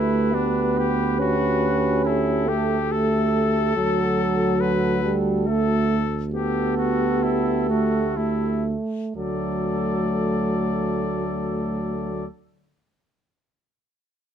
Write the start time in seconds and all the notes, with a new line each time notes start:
Already playing: D2 A3 E4 G4 B4
0.33 B3 D4
0.78 G4
1.19 C#4 F#4
2.05 E4 A4
2.47 A3 G4
2.90 A3 A4
3.76 D2 F#3 F#4
4.61 B4
5.03 G3
5.47 A3 A4
6.32 B3 G4 A4
6.77 F#4
7.23 E4
7.69 A3 F#4
8.17 A3 E4
9.15 D2 F#3 A3 A4 D5